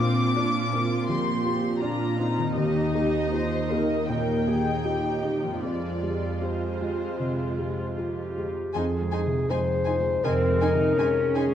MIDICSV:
0, 0, Header, 1, 9, 480
1, 0, Start_track
1, 0, Tempo, 732601
1, 1681, Time_signature, 4, 2, 24, 8
1, 1681, Tempo, 758534
1, 3121, Tempo, 783290
1, 5521, Tempo, 740741
1, 7325, End_track
2, 0, Start_track
2, 0, Title_t, "Violin section"
2, 0, Program_c, 0, 48
2, 0, Note_on_c, 0, 86, 89
2, 697, Note_off_c, 0, 86, 0
2, 715, Note_on_c, 0, 84, 69
2, 1182, Note_off_c, 0, 84, 0
2, 1191, Note_on_c, 0, 82, 67
2, 1671, Note_off_c, 0, 82, 0
2, 1671, Note_on_c, 0, 75, 75
2, 2617, Note_off_c, 0, 75, 0
2, 2637, Note_on_c, 0, 79, 66
2, 3592, Note_on_c, 0, 74, 52
2, 3595, Note_off_c, 0, 79, 0
2, 4071, Note_off_c, 0, 74, 0
2, 4085, Note_on_c, 0, 72, 43
2, 5039, Note_off_c, 0, 72, 0
2, 5520, Note_on_c, 0, 84, 42
2, 5572, Note_off_c, 0, 84, 0
2, 5759, Note_on_c, 0, 84, 36
2, 5811, Note_off_c, 0, 84, 0
2, 6003, Note_on_c, 0, 84, 42
2, 6054, Note_off_c, 0, 84, 0
2, 6236, Note_on_c, 0, 84, 32
2, 6287, Note_off_c, 0, 84, 0
2, 6485, Note_on_c, 0, 84, 37
2, 6537, Note_off_c, 0, 84, 0
2, 6730, Note_on_c, 0, 84, 42
2, 6782, Note_off_c, 0, 84, 0
2, 6973, Note_on_c, 0, 84, 39
2, 7025, Note_off_c, 0, 84, 0
2, 7216, Note_on_c, 0, 84, 42
2, 7268, Note_off_c, 0, 84, 0
2, 7325, End_track
3, 0, Start_track
3, 0, Title_t, "Violin section"
3, 0, Program_c, 1, 48
3, 5511, Note_on_c, 1, 80, 41
3, 5562, Note_off_c, 1, 80, 0
3, 5754, Note_on_c, 1, 80, 36
3, 5806, Note_off_c, 1, 80, 0
3, 6006, Note_on_c, 1, 80, 35
3, 6058, Note_off_c, 1, 80, 0
3, 6232, Note_on_c, 1, 80, 39
3, 6284, Note_off_c, 1, 80, 0
3, 6488, Note_on_c, 1, 80, 43
3, 6540, Note_off_c, 1, 80, 0
3, 6726, Note_on_c, 1, 80, 39
3, 6777, Note_off_c, 1, 80, 0
3, 6967, Note_on_c, 1, 80, 36
3, 7019, Note_off_c, 1, 80, 0
3, 7201, Note_on_c, 1, 80, 44
3, 7253, Note_off_c, 1, 80, 0
3, 7325, End_track
4, 0, Start_track
4, 0, Title_t, "Clarinet"
4, 0, Program_c, 2, 71
4, 5035, Note_on_c, 2, 67, 49
4, 5518, Note_on_c, 2, 68, 61
4, 5528, Note_off_c, 2, 67, 0
4, 6005, Note_on_c, 2, 72, 68
4, 6015, Note_off_c, 2, 68, 0
4, 6484, Note_on_c, 2, 70, 62
4, 6494, Note_off_c, 2, 72, 0
4, 7206, Note_on_c, 2, 68, 59
4, 7216, Note_off_c, 2, 70, 0
4, 7325, Note_off_c, 2, 68, 0
4, 7325, End_track
5, 0, Start_track
5, 0, Title_t, "Harp"
5, 0, Program_c, 3, 46
5, 0, Note_on_c, 3, 46, 47
5, 0, Note_on_c, 3, 60, 35
5, 0, Note_on_c, 3, 62, 38
5, 0, Note_on_c, 3, 65, 36
5, 1557, Note_on_c, 3, 51, 44
5, 1586, Note_on_c, 3, 58, 34
5, 1609, Note_off_c, 3, 65, 0
5, 1617, Note_on_c, 3, 65, 34
5, 1641, Note_off_c, 3, 46, 0
5, 1645, Note_on_c, 3, 67, 38
5, 1656, Note_off_c, 3, 60, 0
5, 1671, Note_off_c, 3, 62, 0
5, 3481, Note_on_c, 3, 53, 32
5, 3510, Note_on_c, 3, 56, 25
5, 3528, Note_off_c, 3, 65, 0
5, 3535, Note_on_c, 3, 65, 24
5, 3556, Note_off_c, 3, 67, 0
5, 3558, Note_off_c, 3, 51, 0
5, 3563, Note_on_c, 3, 67, 29
5, 3572, Note_off_c, 3, 58, 0
5, 5504, Note_off_c, 3, 53, 0
5, 5511, Note_on_c, 3, 53, 42
5, 5523, Note_off_c, 3, 67, 0
5, 5757, Note_on_c, 3, 63, 35
5, 5921, Note_off_c, 3, 56, 0
5, 5949, Note_off_c, 3, 65, 0
5, 5995, Note_on_c, 3, 68, 41
5, 6228, Note_off_c, 3, 63, 0
5, 6236, Note_on_c, 3, 63, 37
5, 6479, Note_on_c, 3, 56, 37
5, 6715, Note_off_c, 3, 63, 0
5, 6723, Note_on_c, 3, 63, 33
5, 6954, Note_off_c, 3, 68, 0
5, 6962, Note_on_c, 3, 68, 32
5, 7185, Note_off_c, 3, 63, 0
5, 7193, Note_on_c, 3, 63, 38
5, 7325, Note_off_c, 3, 53, 0
5, 7325, Note_off_c, 3, 56, 0
5, 7325, Note_off_c, 3, 63, 0
5, 7325, Note_off_c, 3, 68, 0
5, 7325, End_track
6, 0, Start_track
6, 0, Title_t, "Viola section"
6, 0, Program_c, 4, 48
6, 0, Note_on_c, 4, 60, 58
6, 0, Note_on_c, 4, 65, 47
6, 225, Note_off_c, 4, 65, 0
6, 232, Note_on_c, 4, 62, 51
6, 233, Note_on_c, 4, 65, 44
6, 235, Note_off_c, 4, 60, 0
6, 474, Note_off_c, 4, 62, 0
6, 481, Note_on_c, 4, 58, 51
6, 704, Note_off_c, 4, 65, 0
6, 706, Note_off_c, 4, 58, 0
6, 712, Note_on_c, 4, 67, 42
6, 714, Note_on_c, 4, 58, 47
6, 947, Note_off_c, 4, 58, 0
6, 951, Note_on_c, 4, 60, 43
6, 1189, Note_on_c, 4, 65, 42
6, 1190, Note_off_c, 4, 67, 0
6, 1191, Note_off_c, 4, 60, 0
6, 1192, Note_on_c, 4, 62, 47
6, 1433, Note_on_c, 4, 63, 52
6, 1435, Note_off_c, 4, 62, 0
6, 1677, Note_on_c, 4, 67, 53
6, 1679, Note_off_c, 4, 65, 0
6, 1913, Note_off_c, 4, 67, 0
6, 1920, Note_on_c, 4, 67, 46
6, 2156, Note_off_c, 4, 67, 0
6, 2161, Note_on_c, 4, 72, 47
6, 2396, Note_off_c, 4, 72, 0
6, 2401, Note_on_c, 4, 70, 46
6, 2634, Note_off_c, 4, 63, 0
6, 2636, Note_off_c, 4, 70, 0
6, 2642, Note_on_c, 4, 63, 37
6, 2644, Note_on_c, 4, 70, 41
6, 2878, Note_off_c, 4, 70, 0
6, 2879, Note_on_c, 4, 68, 40
6, 3119, Note_off_c, 4, 68, 0
6, 3121, Note_on_c, 4, 67, 35
6, 3578, Note_off_c, 4, 63, 0
6, 3597, Note_off_c, 4, 67, 0
6, 3599, Note_on_c, 4, 65, 41
6, 3600, Note_on_c, 4, 56, 37
6, 5369, Note_off_c, 4, 65, 0
6, 5394, Note_off_c, 4, 56, 0
6, 5526, Note_on_c, 4, 63, 43
6, 5578, Note_off_c, 4, 63, 0
6, 5762, Note_on_c, 4, 63, 39
6, 5814, Note_off_c, 4, 63, 0
6, 5999, Note_on_c, 4, 63, 36
6, 6051, Note_off_c, 4, 63, 0
6, 6245, Note_on_c, 4, 63, 39
6, 6297, Note_off_c, 4, 63, 0
6, 6478, Note_on_c, 4, 63, 39
6, 6530, Note_off_c, 4, 63, 0
6, 6723, Note_on_c, 4, 63, 36
6, 6774, Note_off_c, 4, 63, 0
6, 6958, Note_on_c, 4, 63, 41
6, 7009, Note_off_c, 4, 63, 0
6, 7197, Note_on_c, 4, 63, 44
6, 7249, Note_off_c, 4, 63, 0
6, 7325, End_track
7, 0, Start_track
7, 0, Title_t, "Felt piano"
7, 0, Program_c, 5, 0
7, 0, Control_c, 5, 64, 127
7, 0, Note_on_c, 5, 46, 46
7, 1, Note_on_c, 5, 60, 41
7, 4, Note_on_c, 5, 65, 42
7, 213, Note_off_c, 5, 60, 0
7, 215, Note_off_c, 5, 65, 0
7, 238, Note_on_c, 5, 62, 34
7, 240, Note_on_c, 5, 65, 36
7, 453, Note_off_c, 5, 62, 0
7, 454, Note_off_c, 5, 65, 0
7, 475, Note_on_c, 5, 60, 36
7, 476, Note_on_c, 5, 65, 40
7, 687, Note_off_c, 5, 46, 0
7, 691, Note_off_c, 5, 60, 0
7, 691, Note_off_c, 5, 65, 0
7, 711, Note_on_c, 5, 53, 40
7, 948, Note_on_c, 5, 60, 36
7, 951, Note_on_c, 5, 65, 39
7, 1094, Note_off_c, 5, 53, 0
7, 1166, Note_off_c, 5, 60, 0
7, 1167, Note_off_c, 5, 65, 0
7, 1192, Note_on_c, 5, 62, 38
7, 1192, Note_on_c, 5, 65, 37
7, 1410, Note_off_c, 5, 62, 0
7, 1410, Note_off_c, 5, 65, 0
7, 1437, Note_on_c, 5, 60, 34
7, 1441, Note_on_c, 5, 65, 41
7, 1657, Note_off_c, 5, 60, 0
7, 1659, Note_off_c, 5, 65, 0
7, 1684, Note_on_c, 5, 39, 42
7, 1693, Control_c, 5, 64, 0
7, 1786, Control_c, 5, 64, 127
7, 1921, Note_on_c, 5, 58, 36
7, 1922, Note_on_c, 5, 67, 39
7, 2137, Note_off_c, 5, 58, 0
7, 2138, Note_off_c, 5, 67, 0
7, 2161, Note_on_c, 5, 65, 30
7, 2163, Note_on_c, 5, 67, 33
7, 2376, Note_off_c, 5, 65, 0
7, 2378, Note_off_c, 5, 67, 0
7, 2406, Note_on_c, 5, 58, 34
7, 2406, Note_on_c, 5, 67, 36
7, 2617, Note_off_c, 5, 39, 0
7, 2620, Note_off_c, 5, 58, 0
7, 2620, Note_off_c, 5, 67, 0
7, 2648, Note_on_c, 5, 46, 33
7, 2889, Note_on_c, 5, 58, 32
7, 2892, Note_on_c, 5, 67, 35
7, 3028, Note_off_c, 5, 46, 0
7, 3101, Note_off_c, 5, 58, 0
7, 3102, Note_off_c, 5, 67, 0
7, 3124, Note_on_c, 5, 65, 26
7, 3128, Note_on_c, 5, 67, 32
7, 3334, Note_off_c, 5, 65, 0
7, 3336, Note_off_c, 5, 67, 0
7, 3362, Note_on_c, 5, 58, 28
7, 3365, Note_on_c, 5, 67, 31
7, 3577, Note_off_c, 5, 58, 0
7, 3578, Note_off_c, 5, 67, 0
7, 3603, Note_on_c, 5, 41, 32
7, 3609, Control_c, 5, 64, 0
7, 3720, Control_c, 5, 64, 127
7, 3843, Note_on_c, 5, 56, 28
7, 3847, Note_on_c, 5, 67, 28
7, 4060, Note_off_c, 5, 56, 0
7, 4062, Note_off_c, 5, 67, 0
7, 4085, Note_on_c, 5, 65, 27
7, 4087, Note_on_c, 5, 67, 27
7, 4301, Note_off_c, 5, 65, 0
7, 4302, Note_off_c, 5, 67, 0
7, 4329, Note_on_c, 5, 56, 27
7, 4330, Note_on_c, 5, 67, 28
7, 4542, Note_off_c, 5, 41, 0
7, 4542, Note_off_c, 5, 56, 0
7, 4543, Note_off_c, 5, 67, 0
7, 4563, Note_on_c, 5, 48, 31
7, 4802, Note_on_c, 5, 56, 26
7, 4803, Note_on_c, 5, 67, 26
7, 4942, Note_off_c, 5, 48, 0
7, 5015, Note_off_c, 5, 56, 0
7, 5016, Note_off_c, 5, 67, 0
7, 5041, Note_on_c, 5, 65, 26
7, 5042, Note_on_c, 5, 67, 27
7, 5258, Note_off_c, 5, 65, 0
7, 5259, Note_off_c, 5, 67, 0
7, 5285, Note_on_c, 5, 56, 25
7, 5285, Note_on_c, 5, 67, 27
7, 5500, Note_off_c, 5, 56, 0
7, 5500, Note_off_c, 5, 67, 0
7, 5521, Note_on_c, 5, 41, 42
7, 5533, Control_c, 5, 64, 0
7, 5638, Control_c, 5, 64, 127
7, 5687, Note_on_c, 5, 56, 33
7, 5848, Note_on_c, 5, 48, 34
7, 5944, Note_off_c, 5, 56, 0
7, 6008, Note_on_c, 5, 56, 32
7, 6103, Note_off_c, 5, 48, 0
7, 6163, Note_on_c, 5, 68, 30
7, 6263, Note_off_c, 5, 56, 0
7, 6323, Note_on_c, 5, 56, 31
7, 6423, Note_off_c, 5, 68, 0
7, 6463, Note_off_c, 5, 41, 0
7, 6486, Note_on_c, 5, 48, 36
7, 6584, Note_off_c, 5, 56, 0
7, 6640, Note_on_c, 5, 56, 35
7, 6745, Note_off_c, 5, 48, 0
7, 6802, Note_on_c, 5, 48, 34
7, 6900, Note_off_c, 5, 56, 0
7, 6963, Note_on_c, 5, 56, 36
7, 7059, Note_off_c, 5, 48, 0
7, 7118, Note_on_c, 5, 68, 35
7, 7217, Note_off_c, 5, 56, 0
7, 7276, Note_on_c, 5, 56, 34
7, 7325, Note_off_c, 5, 56, 0
7, 7325, Note_off_c, 5, 68, 0
7, 7325, End_track
8, 0, Start_track
8, 0, Title_t, "Cello section"
8, 0, Program_c, 6, 48
8, 0, Note_on_c, 6, 46, 57
8, 1655, Note_off_c, 6, 46, 0
8, 1684, Note_on_c, 6, 39, 55
8, 3574, Note_off_c, 6, 39, 0
8, 3598, Note_on_c, 6, 41, 42
8, 5368, Note_off_c, 6, 41, 0
8, 6488, Note_on_c, 6, 60, 47
8, 6713, Note_off_c, 6, 60, 0
8, 6734, Note_on_c, 6, 63, 49
8, 6970, Note_off_c, 6, 63, 0
8, 6970, Note_on_c, 6, 61, 52
8, 7325, Note_off_c, 6, 61, 0
8, 7325, End_track
9, 0, Start_track
9, 0, Title_t, "Double bass section"
9, 0, Program_c, 7, 48
9, 5518, Note_on_c, 7, 41, 51
9, 5949, Note_off_c, 7, 41, 0
9, 6000, Note_on_c, 7, 41, 44
9, 6428, Note_off_c, 7, 41, 0
9, 6480, Note_on_c, 7, 41, 55
9, 6908, Note_off_c, 7, 41, 0
9, 6959, Note_on_c, 7, 41, 41
9, 7325, Note_off_c, 7, 41, 0
9, 7325, End_track
0, 0, End_of_file